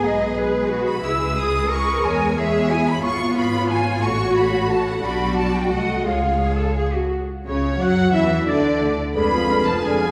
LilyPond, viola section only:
\new Staff \with { instrumentName = "Viola section" } { \clef bass \time 3/4 \key cis \dorian \tempo 4 = 178 <gis gis'>4 <gis gis'>2 | <gis gis'>2 <gis gis'>4 | <gis gis'>4 <gis gis'>2 | \key fis \minor <b eis'>2. |
<a fis'>2. | <g d'>2 <a ges'>4 | <gis gis'>2~ <gis gis'>8 r8 | r4 cis4 fis4 |
e4 d4. r8 | <d aes>8 f8 <d aes>8 f8 <d aes>8 f8 | }